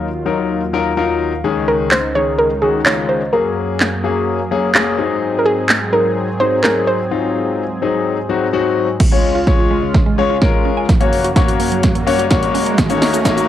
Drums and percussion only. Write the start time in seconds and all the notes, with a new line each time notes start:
1.91 snare, clap
2.86 snare, clap
3.80 snare, clap
4.75 snare, clap
5.69 snare, clap
6.64 snare, clap
9.00 kick, snare, crash
9.47 kick, snare
9.94 kick, snare
10.42 kick, snare
10.89 kick, snare, closed hi-hat
11.01 closed hi-hat
11.13 open hi-hat
11.24 closed hi-hat
11.36 kick, snare, closed hi-hat
11.48 closed hi-hat
11.60 open hi-hat
11.72 closed hi-hat
11.83 kick, snare, closed hi-hat
11.95 closed hi-hat
12.07 open hi-hat
12.19 closed hi-hat
12.31 kick, snare, closed hi-hat
12.43 closed hi-hat
12.55 open hi-hat
12.66 closed hi-hat
12.78 kick, snare, closed hi-hat, shaker
12.90 closed hi-hat, shaker
13.02 snare, open hi-hat, shaker
13.14 closed hi-hat, shaker
13.25 kick, snare, closed hi-hat, shaker
13.38 closed hi-hat, shaker